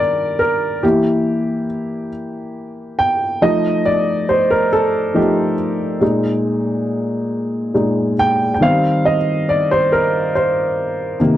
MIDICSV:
0, 0, Header, 1, 2, 480
1, 0, Start_track
1, 0, Key_signature, -3, "major"
1, 0, Tempo, 863309
1, 463, Time_signature, 6, 3, 24, 8
1, 6323, End_track
2, 0, Start_track
2, 0, Title_t, "Upright piano"
2, 0, Program_c, 0, 0
2, 0, Control_c, 0, 64, 127
2, 0, Note_on_c, 0, 51, 46
2, 0, Note_on_c, 0, 55, 42
2, 0, Note_on_c, 0, 62, 49
2, 0, Note_on_c, 0, 67, 60
2, 0, Note_on_c, 0, 70, 91
2, 0, Note_on_c, 0, 74, 81
2, 217, Note_off_c, 0, 70, 0
2, 217, Note_on_c, 0, 70, 74
2, 227, Note_off_c, 0, 74, 0
2, 462, Note_off_c, 0, 67, 0
2, 462, Note_on_c, 0, 52, 49
2, 462, Note_on_c, 0, 67, 70
2, 466, Note_on_c, 0, 58, 45
2, 467, Note_off_c, 0, 70, 0
2, 468, Note_on_c, 0, 64, 48
2, 469, Control_c, 0, 64, 0
2, 470, Note_off_c, 0, 51, 0
2, 471, Note_off_c, 0, 55, 0
2, 473, Note_off_c, 0, 62, 0
2, 558, Control_c, 0, 64, 127
2, 920, Note_off_c, 0, 67, 0
2, 1160, Note_off_c, 0, 52, 0
2, 1162, Note_off_c, 0, 58, 0
2, 1164, Note_off_c, 0, 64, 0
2, 1660, Note_on_c, 0, 79, 83
2, 1900, Note_on_c, 0, 53, 52
2, 1903, Note_on_c, 0, 75, 84
2, 1904, Note_on_c, 0, 57, 44
2, 1909, Note_off_c, 0, 79, 0
2, 1909, Note_on_c, 0, 63, 55
2, 1910, Control_c, 0, 64, 0
2, 2013, Control_c, 0, 64, 127
2, 2143, Note_on_c, 0, 74, 79
2, 2151, Note_off_c, 0, 75, 0
2, 2385, Note_on_c, 0, 72, 76
2, 2391, Note_off_c, 0, 74, 0
2, 2505, Note_on_c, 0, 70, 76
2, 2508, Note_off_c, 0, 72, 0
2, 2600, Note_off_c, 0, 53, 0
2, 2602, Note_off_c, 0, 57, 0
2, 2605, Note_off_c, 0, 63, 0
2, 2628, Note_off_c, 0, 70, 0
2, 2628, Note_on_c, 0, 69, 79
2, 2860, Note_on_c, 0, 53, 43
2, 2862, Note_on_c, 0, 57, 36
2, 2866, Note_on_c, 0, 63, 48
2, 2868, Note_on_c, 0, 67, 65
2, 2874, Note_off_c, 0, 69, 0
2, 3080, Note_off_c, 0, 53, 0
2, 3081, Note_off_c, 0, 57, 0
2, 3083, Note_off_c, 0, 63, 0
2, 3325, Note_off_c, 0, 67, 0
2, 3339, Note_on_c, 0, 46, 47
2, 3343, Note_on_c, 0, 56, 45
2, 3348, Note_on_c, 0, 63, 51
2, 3353, Control_c, 0, 64, 0
2, 3454, Control_c, 0, 64, 127
2, 4297, Note_off_c, 0, 46, 0
2, 4297, Note_off_c, 0, 56, 0
2, 4299, Note_off_c, 0, 63, 0
2, 4305, Note_on_c, 0, 46, 40
2, 4305, Note_on_c, 0, 56, 38
2, 4308, Note_on_c, 0, 63, 44
2, 4523, Note_off_c, 0, 46, 0
2, 4523, Note_off_c, 0, 56, 0
2, 4525, Note_off_c, 0, 63, 0
2, 4556, Note_on_c, 0, 79, 91
2, 4742, Note_off_c, 0, 79, 0
2, 4750, Note_on_c, 0, 79, 62
2, 4784, Note_on_c, 0, 51, 49
2, 4787, Note_off_c, 0, 79, 0
2, 4789, Note_on_c, 0, 55, 43
2, 4793, Note_on_c, 0, 60, 54
2, 4794, Control_c, 0, 64, 0
2, 4795, Note_on_c, 0, 77, 85
2, 4897, Control_c, 0, 64, 127
2, 5034, Note_on_c, 0, 75, 75
2, 5038, Note_off_c, 0, 77, 0
2, 5087, Note_off_c, 0, 75, 0
2, 5276, Note_on_c, 0, 74, 76
2, 5395, Note_off_c, 0, 74, 0
2, 5401, Note_on_c, 0, 72, 76
2, 5517, Note_off_c, 0, 72, 0
2, 5517, Note_on_c, 0, 70, 73
2, 5735, Note_off_c, 0, 70, 0
2, 5757, Note_on_c, 0, 72, 71
2, 6203, Note_off_c, 0, 51, 0
2, 6206, Note_off_c, 0, 55, 0
2, 6208, Note_off_c, 0, 60, 0
2, 6209, Note_off_c, 0, 72, 0
2, 6226, Note_on_c, 0, 48, 49
2, 6232, Control_c, 0, 64, 0
2, 6232, Note_on_c, 0, 51, 46
2, 6233, Note_on_c, 0, 58, 55
2, 6323, Note_off_c, 0, 48, 0
2, 6323, Note_off_c, 0, 51, 0
2, 6323, Note_off_c, 0, 58, 0
2, 6323, End_track
0, 0, End_of_file